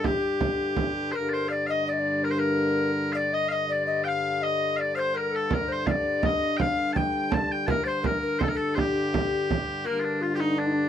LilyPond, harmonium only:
\new Staff \with { instrumentName = "Harmonium" } { \clef bass \time 3/4 \key g \minor \tempo 4 = 165 <g, d>2. | <g, d>2.~ | <g, d>2.~ | <g, d>2.~ |
<g, d>2. | <g, d>2.~ | <g, d>2.~ | <g, d>2.~ |
<g, d>2. | <g, d>2. | }